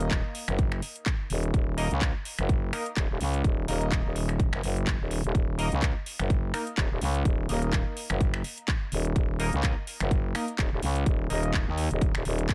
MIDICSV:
0, 0, Header, 1, 4, 480
1, 0, Start_track
1, 0, Key_signature, -6, "minor"
1, 0, Tempo, 476190
1, 1551, Time_signature, 4, 2, 24, 8
1, 12642, End_track
2, 0, Start_track
2, 0, Title_t, "Synth stab"
2, 0, Program_c, 0, 62
2, 0, Note_on_c, 0, 58, 81
2, 0, Note_on_c, 0, 63, 73
2, 0, Note_on_c, 0, 70, 73
2, 0, Note_on_c, 0, 75, 87
2, 1766, Note_off_c, 0, 58, 0
2, 1766, Note_off_c, 0, 63, 0
2, 1766, Note_off_c, 0, 70, 0
2, 1766, Note_off_c, 0, 75, 0
2, 1791, Note_on_c, 0, 58, 102
2, 1791, Note_on_c, 0, 63, 92
2, 1791, Note_on_c, 0, 70, 90
2, 1791, Note_on_c, 0, 75, 111
2, 1895, Note_off_c, 0, 58, 0
2, 1895, Note_off_c, 0, 63, 0
2, 1895, Note_off_c, 0, 70, 0
2, 1895, Note_off_c, 0, 75, 0
2, 2752, Note_on_c, 0, 58, 77
2, 2752, Note_on_c, 0, 63, 73
2, 2752, Note_on_c, 0, 70, 71
2, 2752, Note_on_c, 0, 75, 86
2, 2856, Note_off_c, 0, 58, 0
2, 2856, Note_off_c, 0, 63, 0
2, 2856, Note_off_c, 0, 70, 0
2, 2856, Note_off_c, 0, 75, 0
2, 3712, Note_on_c, 0, 58, 80
2, 3712, Note_on_c, 0, 63, 74
2, 3712, Note_on_c, 0, 70, 75
2, 3712, Note_on_c, 0, 75, 87
2, 5606, Note_off_c, 0, 58, 0
2, 5606, Note_off_c, 0, 63, 0
2, 5606, Note_off_c, 0, 70, 0
2, 5606, Note_off_c, 0, 75, 0
2, 5630, Note_on_c, 0, 58, 101
2, 5630, Note_on_c, 0, 63, 90
2, 5630, Note_on_c, 0, 70, 92
2, 5630, Note_on_c, 0, 75, 109
2, 5735, Note_off_c, 0, 58, 0
2, 5735, Note_off_c, 0, 63, 0
2, 5735, Note_off_c, 0, 70, 0
2, 5735, Note_off_c, 0, 75, 0
2, 6591, Note_on_c, 0, 58, 78
2, 6591, Note_on_c, 0, 63, 73
2, 6591, Note_on_c, 0, 70, 73
2, 6591, Note_on_c, 0, 75, 84
2, 6695, Note_off_c, 0, 58, 0
2, 6695, Note_off_c, 0, 63, 0
2, 6695, Note_off_c, 0, 70, 0
2, 6695, Note_off_c, 0, 75, 0
2, 7551, Note_on_c, 0, 58, 80
2, 7551, Note_on_c, 0, 63, 71
2, 7551, Note_on_c, 0, 70, 73
2, 7551, Note_on_c, 0, 75, 89
2, 9446, Note_off_c, 0, 58, 0
2, 9446, Note_off_c, 0, 63, 0
2, 9446, Note_off_c, 0, 70, 0
2, 9446, Note_off_c, 0, 75, 0
2, 9470, Note_on_c, 0, 63, 95
2, 9470, Note_on_c, 0, 70, 94
2, 9470, Note_on_c, 0, 75, 109
2, 9471, Note_on_c, 0, 58, 100
2, 9575, Note_off_c, 0, 58, 0
2, 9575, Note_off_c, 0, 63, 0
2, 9575, Note_off_c, 0, 70, 0
2, 9575, Note_off_c, 0, 75, 0
2, 10431, Note_on_c, 0, 58, 78
2, 10431, Note_on_c, 0, 63, 72
2, 10431, Note_on_c, 0, 70, 71
2, 10431, Note_on_c, 0, 75, 83
2, 10535, Note_off_c, 0, 58, 0
2, 10535, Note_off_c, 0, 63, 0
2, 10535, Note_off_c, 0, 70, 0
2, 10535, Note_off_c, 0, 75, 0
2, 11390, Note_on_c, 0, 58, 80
2, 11390, Note_on_c, 0, 63, 73
2, 11390, Note_on_c, 0, 70, 73
2, 11390, Note_on_c, 0, 75, 88
2, 12642, Note_off_c, 0, 58, 0
2, 12642, Note_off_c, 0, 63, 0
2, 12642, Note_off_c, 0, 70, 0
2, 12642, Note_off_c, 0, 75, 0
2, 12642, End_track
3, 0, Start_track
3, 0, Title_t, "FM bass"
3, 0, Program_c, 1, 39
3, 0, Note_on_c, 1, 27, 101
3, 223, Note_off_c, 1, 27, 0
3, 484, Note_on_c, 1, 30, 102
3, 814, Note_off_c, 1, 30, 0
3, 1312, Note_on_c, 1, 27, 101
3, 1534, Note_off_c, 1, 27, 0
3, 1551, Note_on_c, 1, 27, 96
3, 1903, Note_off_c, 1, 27, 0
3, 1924, Note_on_c, 1, 37, 96
3, 2143, Note_off_c, 1, 37, 0
3, 2405, Note_on_c, 1, 30, 101
3, 2734, Note_off_c, 1, 30, 0
3, 2991, Note_on_c, 1, 27, 99
3, 3103, Note_off_c, 1, 27, 0
3, 3123, Note_on_c, 1, 27, 98
3, 3214, Note_off_c, 1, 27, 0
3, 3230, Note_on_c, 1, 37, 100
3, 3454, Note_off_c, 1, 37, 0
3, 3471, Note_on_c, 1, 27, 98
3, 3694, Note_off_c, 1, 27, 0
3, 3710, Note_on_c, 1, 27, 98
3, 4063, Note_off_c, 1, 27, 0
3, 4084, Note_on_c, 1, 27, 95
3, 4543, Note_off_c, 1, 27, 0
3, 4563, Note_on_c, 1, 30, 101
3, 4654, Note_off_c, 1, 30, 0
3, 4671, Note_on_c, 1, 30, 100
3, 5023, Note_off_c, 1, 30, 0
3, 5043, Note_on_c, 1, 27, 99
3, 5263, Note_off_c, 1, 27, 0
3, 5284, Note_on_c, 1, 27, 98
3, 5374, Note_off_c, 1, 27, 0
3, 5391, Note_on_c, 1, 27, 99
3, 5743, Note_off_c, 1, 27, 0
3, 5763, Note_on_c, 1, 37, 98
3, 5983, Note_off_c, 1, 37, 0
3, 6243, Note_on_c, 1, 30, 101
3, 6574, Note_off_c, 1, 30, 0
3, 6830, Note_on_c, 1, 27, 99
3, 6943, Note_off_c, 1, 27, 0
3, 6963, Note_on_c, 1, 27, 98
3, 7054, Note_off_c, 1, 27, 0
3, 7070, Note_on_c, 1, 37, 100
3, 7294, Note_off_c, 1, 37, 0
3, 7311, Note_on_c, 1, 27, 99
3, 7534, Note_off_c, 1, 27, 0
3, 7551, Note_on_c, 1, 27, 101
3, 7903, Note_off_c, 1, 27, 0
3, 8164, Note_on_c, 1, 30, 101
3, 8494, Note_off_c, 1, 30, 0
3, 8991, Note_on_c, 1, 27, 99
3, 9214, Note_off_c, 1, 27, 0
3, 9231, Note_on_c, 1, 27, 101
3, 9583, Note_off_c, 1, 27, 0
3, 9605, Note_on_c, 1, 37, 97
3, 9823, Note_off_c, 1, 37, 0
3, 10085, Note_on_c, 1, 30, 103
3, 10414, Note_off_c, 1, 30, 0
3, 10671, Note_on_c, 1, 27, 98
3, 10783, Note_off_c, 1, 27, 0
3, 10805, Note_on_c, 1, 27, 98
3, 10895, Note_off_c, 1, 27, 0
3, 10912, Note_on_c, 1, 37, 100
3, 11134, Note_off_c, 1, 37, 0
3, 11151, Note_on_c, 1, 27, 98
3, 11374, Note_off_c, 1, 27, 0
3, 11393, Note_on_c, 1, 27, 99
3, 11744, Note_off_c, 1, 27, 0
3, 11765, Note_on_c, 1, 39, 99
3, 11984, Note_off_c, 1, 39, 0
3, 12006, Note_on_c, 1, 27, 105
3, 12224, Note_off_c, 1, 27, 0
3, 12245, Note_on_c, 1, 27, 101
3, 12335, Note_off_c, 1, 27, 0
3, 12352, Note_on_c, 1, 27, 101
3, 12575, Note_off_c, 1, 27, 0
3, 12591, Note_on_c, 1, 28, 99
3, 12642, Note_off_c, 1, 28, 0
3, 12642, End_track
4, 0, Start_track
4, 0, Title_t, "Drums"
4, 4, Note_on_c, 9, 42, 56
4, 105, Note_off_c, 9, 42, 0
4, 111, Note_on_c, 9, 36, 111
4, 111, Note_on_c, 9, 39, 127
4, 111, Note_on_c, 9, 42, 68
4, 212, Note_off_c, 9, 36, 0
4, 212, Note_off_c, 9, 39, 0
4, 212, Note_off_c, 9, 42, 0
4, 350, Note_on_c, 9, 46, 112
4, 451, Note_off_c, 9, 46, 0
4, 484, Note_on_c, 9, 26, 65
4, 484, Note_on_c, 9, 42, 54
4, 585, Note_off_c, 9, 26, 0
4, 585, Note_off_c, 9, 42, 0
4, 590, Note_on_c, 9, 42, 67
4, 591, Note_on_c, 9, 36, 127
4, 691, Note_off_c, 9, 42, 0
4, 692, Note_off_c, 9, 36, 0
4, 723, Note_on_c, 9, 26, 79
4, 824, Note_off_c, 9, 26, 0
4, 830, Note_on_c, 9, 46, 113
4, 931, Note_off_c, 9, 46, 0
4, 963, Note_on_c, 9, 42, 55
4, 1064, Note_off_c, 9, 42, 0
4, 1071, Note_on_c, 9, 36, 115
4, 1071, Note_on_c, 9, 39, 126
4, 1071, Note_on_c, 9, 42, 63
4, 1171, Note_off_c, 9, 42, 0
4, 1172, Note_off_c, 9, 36, 0
4, 1172, Note_off_c, 9, 39, 0
4, 1310, Note_on_c, 9, 46, 110
4, 1411, Note_off_c, 9, 46, 0
4, 1444, Note_on_c, 9, 42, 54
4, 1545, Note_off_c, 9, 42, 0
4, 1551, Note_on_c, 9, 36, 122
4, 1551, Note_on_c, 9, 42, 68
4, 1652, Note_off_c, 9, 36, 0
4, 1652, Note_off_c, 9, 42, 0
4, 1791, Note_on_c, 9, 46, 115
4, 1892, Note_off_c, 9, 46, 0
4, 1925, Note_on_c, 9, 42, 54
4, 2025, Note_off_c, 9, 42, 0
4, 2031, Note_on_c, 9, 36, 113
4, 2031, Note_on_c, 9, 42, 66
4, 2032, Note_on_c, 9, 39, 127
4, 2132, Note_off_c, 9, 36, 0
4, 2132, Note_off_c, 9, 39, 0
4, 2132, Note_off_c, 9, 42, 0
4, 2271, Note_on_c, 9, 46, 109
4, 2372, Note_off_c, 9, 46, 0
4, 2405, Note_on_c, 9, 26, 65
4, 2405, Note_on_c, 9, 42, 53
4, 2506, Note_off_c, 9, 26, 0
4, 2506, Note_off_c, 9, 42, 0
4, 2511, Note_on_c, 9, 36, 123
4, 2511, Note_on_c, 9, 42, 65
4, 2612, Note_off_c, 9, 36, 0
4, 2612, Note_off_c, 9, 42, 0
4, 2752, Note_on_c, 9, 26, 59
4, 2752, Note_on_c, 9, 46, 114
4, 2852, Note_off_c, 9, 26, 0
4, 2852, Note_off_c, 9, 46, 0
4, 2885, Note_on_c, 9, 42, 52
4, 2985, Note_off_c, 9, 42, 0
4, 2991, Note_on_c, 9, 36, 118
4, 2992, Note_on_c, 9, 39, 126
4, 2992, Note_on_c, 9, 42, 61
4, 3092, Note_off_c, 9, 36, 0
4, 3093, Note_off_c, 9, 39, 0
4, 3093, Note_off_c, 9, 42, 0
4, 3231, Note_on_c, 9, 46, 111
4, 3332, Note_off_c, 9, 46, 0
4, 3365, Note_on_c, 9, 42, 53
4, 3465, Note_off_c, 9, 42, 0
4, 3471, Note_on_c, 9, 36, 123
4, 3471, Note_on_c, 9, 42, 67
4, 3572, Note_off_c, 9, 36, 0
4, 3572, Note_off_c, 9, 42, 0
4, 3711, Note_on_c, 9, 46, 108
4, 3812, Note_off_c, 9, 46, 0
4, 3844, Note_on_c, 9, 42, 52
4, 3945, Note_off_c, 9, 42, 0
4, 3950, Note_on_c, 9, 42, 64
4, 3951, Note_on_c, 9, 36, 114
4, 3951, Note_on_c, 9, 39, 121
4, 4051, Note_off_c, 9, 39, 0
4, 4051, Note_off_c, 9, 42, 0
4, 4052, Note_off_c, 9, 36, 0
4, 4191, Note_on_c, 9, 46, 112
4, 4292, Note_off_c, 9, 46, 0
4, 4324, Note_on_c, 9, 26, 66
4, 4324, Note_on_c, 9, 42, 52
4, 4425, Note_off_c, 9, 26, 0
4, 4425, Note_off_c, 9, 42, 0
4, 4431, Note_on_c, 9, 36, 125
4, 4431, Note_on_c, 9, 42, 63
4, 4532, Note_off_c, 9, 36, 0
4, 4532, Note_off_c, 9, 42, 0
4, 4564, Note_on_c, 9, 26, 79
4, 4665, Note_off_c, 9, 26, 0
4, 4671, Note_on_c, 9, 46, 112
4, 4772, Note_off_c, 9, 46, 0
4, 4804, Note_on_c, 9, 42, 51
4, 4905, Note_off_c, 9, 42, 0
4, 4911, Note_on_c, 9, 36, 112
4, 4911, Note_on_c, 9, 39, 123
4, 4911, Note_on_c, 9, 42, 59
4, 5011, Note_off_c, 9, 36, 0
4, 5012, Note_off_c, 9, 39, 0
4, 5012, Note_off_c, 9, 42, 0
4, 5151, Note_on_c, 9, 46, 112
4, 5252, Note_off_c, 9, 46, 0
4, 5284, Note_on_c, 9, 42, 50
4, 5385, Note_off_c, 9, 42, 0
4, 5391, Note_on_c, 9, 36, 121
4, 5391, Note_on_c, 9, 42, 64
4, 5491, Note_off_c, 9, 36, 0
4, 5492, Note_off_c, 9, 42, 0
4, 5631, Note_on_c, 9, 46, 107
4, 5732, Note_off_c, 9, 46, 0
4, 5764, Note_on_c, 9, 42, 53
4, 5865, Note_off_c, 9, 42, 0
4, 5871, Note_on_c, 9, 36, 108
4, 5871, Note_on_c, 9, 39, 120
4, 5871, Note_on_c, 9, 42, 63
4, 5971, Note_off_c, 9, 36, 0
4, 5972, Note_off_c, 9, 39, 0
4, 5972, Note_off_c, 9, 42, 0
4, 6111, Note_on_c, 9, 46, 108
4, 6212, Note_off_c, 9, 46, 0
4, 6244, Note_on_c, 9, 26, 68
4, 6244, Note_on_c, 9, 42, 50
4, 6345, Note_off_c, 9, 26, 0
4, 6345, Note_off_c, 9, 42, 0
4, 6351, Note_on_c, 9, 36, 122
4, 6351, Note_on_c, 9, 42, 65
4, 6452, Note_off_c, 9, 36, 0
4, 6452, Note_off_c, 9, 42, 0
4, 6590, Note_on_c, 9, 26, 62
4, 6590, Note_on_c, 9, 46, 107
4, 6691, Note_off_c, 9, 26, 0
4, 6691, Note_off_c, 9, 46, 0
4, 6723, Note_on_c, 9, 42, 52
4, 6824, Note_off_c, 9, 42, 0
4, 6830, Note_on_c, 9, 39, 114
4, 6830, Note_on_c, 9, 42, 61
4, 6831, Note_on_c, 9, 36, 108
4, 6930, Note_off_c, 9, 42, 0
4, 6931, Note_off_c, 9, 36, 0
4, 6931, Note_off_c, 9, 39, 0
4, 7070, Note_on_c, 9, 46, 107
4, 7171, Note_off_c, 9, 46, 0
4, 7204, Note_on_c, 9, 42, 51
4, 7305, Note_off_c, 9, 42, 0
4, 7311, Note_on_c, 9, 36, 116
4, 7311, Note_on_c, 9, 42, 69
4, 7412, Note_off_c, 9, 36, 0
4, 7412, Note_off_c, 9, 42, 0
4, 7551, Note_on_c, 9, 46, 103
4, 7651, Note_off_c, 9, 46, 0
4, 7684, Note_on_c, 9, 42, 55
4, 7785, Note_off_c, 9, 42, 0
4, 7791, Note_on_c, 9, 36, 104
4, 7791, Note_on_c, 9, 39, 118
4, 7791, Note_on_c, 9, 42, 67
4, 7891, Note_off_c, 9, 42, 0
4, 7892, Note_off_c, 9, 36, 0
4, 7892, Note_off_c, 9, 39, 0
4, 8030, Note_on_c, 9, 46, 102
4, 8131, Note_off_c, 9, 46, 0
4, 8164, Note_on_c, 9, 26, 72
4, 8164, Note_on_c, 9, 42, 54
4, 8265, Note_off_c, 9, 26, 0
4, 8265, Note_off_c, 9, 42, 0
4, 8271, Note_on_c, 9, 36, 117
4, 8271, Note_on_c, 9, 42, 67
4, 8372, Note_off_c, 9, 36, 0
4, 8372, Note_off_c, 9, 42, 0
4, 8404, Note_on_c, 9, 26, 85
4, 8505, Note_off_c, 9, 26, 0
4, 8511, Note_on_c, 9, 46, 105
4, 8611, Note_off_c, 9, 46, 0
4, 8644, Note_on_c, 9, 42, 52
4, 8745, Note_off_c, 9, 42, 0
4, 8751, Note_on_c, 9, 36, 107
4, 8751, Note_on_c, 9, 39, 113
4, 8751, Note_on_c, 9, 42, 62
4, 8852, Note_off_c, 9, 36, 0
4, 8852, Note_off_c, 9, 39, 0
4, 8852, Note_off_c, 9, 42, 0
4, 8990, Note_on_c, 9, 46, 104
4, 9091, Note_off_c, 9, 46, 0
4, 9124, Note_on_c, 9, 42, 53
4, 9225, Note_off_c, 9, 42, 0
4, 9231, Note_on_c, 9, 36, 113
4, 9231, Note_on_c, 9, 42, 70
4, 9332, Note_off_c, 9, 36, 0
4, 9332, Note_off_c, 9, 42, 0
4, 9471, Note_on_c, 9, 46, 105
4, 9572, Note_off_c, 9, 46, 0
4, 9604, Note_on_c, 9, 42, 57
4, 9705, Note_off_c, 9, 42, 0
4, 9711, Note_on_c, 9, 36, 100
4, 9711, Note_on_c, 9, 39, 116
4, 9711, Note_on_c, 9, 42, 72
4, 9812, Note_off_c, 9, 36, 0
4, 9812, Note_off_c, 9, 39, 0
4, 9812, Note_off_c, 9, 42, 0
4, 9951, Note_on_c, 9, 46, 100
4, 10052, Note_off_c, 9, 46, 0
4, 10084, Note_on_c, 9, 26, 72
4, 10084, Note_on_c, 9, 42, 55
4, 10185, Note_off_c, 9, 26, 0
4, 10185, Note_off_c, 9, 42, 0
4, 10191, Note_on_c, 9, 36, 113
4, 10191, Note_on_c, 9, 42, 70
4, 10292, Note_off_c, 9, 36, 0
4, 10292, Note_off_c, 9, 42, 0
4, 10432, Note_on_c, 9, 26, 66
4, 10432, Note_on_c, 9, 46, 104
4, 10533, Note_off_c, 9, 26, 0
4, 10533, Note_off_c, 9, 46, 0
4, 10565, Note_on_c, 9, 42, 55
4, 10666, Note_off_c, 9, 42, 0
4, 10671, Note_on_c, 9, 36, 105
4, 10671, Note_on_c, 9, 39, 121
4, 10671, Note_on_c, 9, 42, 64
4, 10772, Note_off_c, 9, 36, 0
4, 10772, Note_off_c, 9, 39, 0
4, 10772, Note_off_c, 9, 42, 0
4, 10912, Note_on_c, 9, 46, 101
4, 11012, Note_off_c, 9, 46, 0
4, 11045, Note_on_c, 9, 42, 55
4, 11146, Note_off_c, 9, 42, 0
4, 11151, Note_on_c, 9, 36, 118
4, 11151, Note_on_c, 9, 42, 72
4, 11252, Note_off_c, 9, 36, 0
4, 11252, Note_off_c, 9, 42, 0
4, 11391, Note_on_c, 9, 46, 102
4, 11492, Note_off_c, 9, 46, 0
4, 11524, Note_on_c, 9, 42, 59
4, 11625, Note_off_c, 9, 42, 0
4, 11631, Note_on_c, 9, 36, 105
4, 11631, Note_on_c, 9, 39, 122
4, 11631, Note_on_c, 9, 42, 72
4, 11732, Note_off_c, 9, 36, 0
4, 11732, Note_off_c, 9, 39, 0
4, 11732, Note_off_c, 9, 42, 0
4, 11870, Note_on_c, 9, 46, 102
4, 11971, Note_off_c, 9, 46, 0
4, 12004, Note_on_c, 9, 42, 57
4, 12105, Note_off_c, 9, 42, 0
4, 12111, Note_on_c, 9, 36, 116
4, 12111, Note_on_c, 9, 42, 73
4, 12211, Note_off_c, 9, 42, 0
4, 12212, Note_off_c, 9, 36, 0
4, 12244, Note_on_c, 9, 26, 84
4, 12345, Note_off_c, 9, 26, 0
4, 12350, Note_on_c, 9, 46, 104
4, 12451, Note_off_c, 9, 46, 0
4, 12484, Note_on_c, 9, 42, 58
4, 12585, Note_off_c, 9, 42, 0
4, 12591, Note_on_c, 9, 36, 107
4, 12591, Note_on_c, 9, 39, 112
4, 12591, Note_on_c, 9, 42, 67
4, 12642, Note_off_c, 9, 36, 0
4, 12642, Note_off_c, 9, 39, 0
4, 12642, Note_off_c, 9, 42, 0
4, 12642, End_track
0, 0, End_of_file